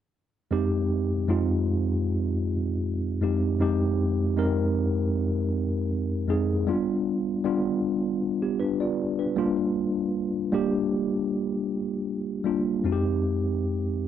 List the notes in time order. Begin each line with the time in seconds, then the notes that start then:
0.51 F2 G#3 C4 D#4 G4
1.28 F2 G#3 C4 D#4 F4
3.22 F2 G#3 C4 D#4 G4
3.60 F2 G#3 C4 D#4 G4
4.36 F2 G#3 C4 D#4 A#4
6.28 F2 G#3 C4 D#4 G#4
6.67 G3 B3 D4 F4
7.44 G3 B3 D4 F4
8.42 B3 G4
8.60 D4 B4
8.80 F4 D5
9.19 D4 B4
9.36 G3 A#3 D4 F4
10.52 G3 A#3 D4 G4
12.44 G3 A#3 D4 F4
12.84 F2 G#3 C4 D#4 F#4
12.92 G4